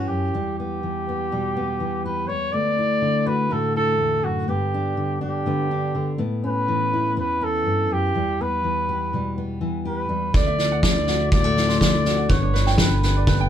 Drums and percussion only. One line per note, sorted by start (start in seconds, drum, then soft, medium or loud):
10.34 kick medium
10.34 snare soft
10.58 snare soft
10.83 kick medium
10.83 snare medium
11.07 snare soft
11.31 kick medium
11.31 snare soft
11.57 snare soft
11.69 snare soft
11.81 kick medium
11.81 snare medium
12.05 snare soft
12.29 kick medium
12.29 snare soft
12.55 snare soft
12.66 snare soft
12.78 kick medium
12.78 snare medium
13.03 snare soft
13.27 kick medium
13.27 snare soft